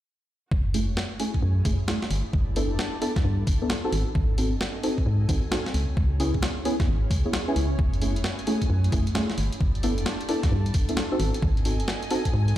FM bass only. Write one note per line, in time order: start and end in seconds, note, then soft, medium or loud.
0.52 0.90 F#1 medium
0.89 0.96 E1 medium
1.43 1.62 F#2 loud
1.65 1.77 F#1 medium
2.11 2.23 G1 medium
2.33 2.72 G1 loud
2.71 2.77 E1 medium
3.24 3.44 G2 loud
3.47 3.59 G1 medium
3.93 4.05 G#1 medium
4.15 4.54 G#1 loud
4.53 4.59 F#1 medium
5.06 5.26 G#2 loud
5.29 5.41 G#1 medium
5.74 5.86 C#2 medium
5.97 6.36 C#2 medium
6.34 6.41 B1 medium
6.88 7.08 G#1 loud
7.11 7.23 C#2 medium
7.56 7.76 C#2 medium
7.79 8.18 F#1 loud
8.16 8.23 E1 medium
8.70 8.90 F#2 loud
8.92 9.04 F#1 medium
9.38 9.50 G1 medium
9.61 9.99 G1 medium
9.98 10.05 E1 medium
10.52 10.71 G2 loud
10.74 10.86 G1 medium
11.20 11.32 G#1 medium
11.42 11.82 G#1 medium
11.80 11.87 F#1 medium
12.34 12.53 G#2 loud